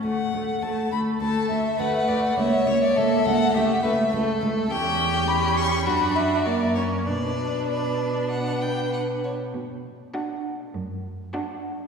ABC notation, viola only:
X:1
M:4/4
L:1/8
Q:1/4=102
K:D
V:1 name="Viola"
A, A, A, A, A, A, A, A, | ^A, A, A, A, =A, A, A, A, | [K:Bm] C2 C2 D2 ^A, C | D6- D z |
z2 D2 z2 D2 |]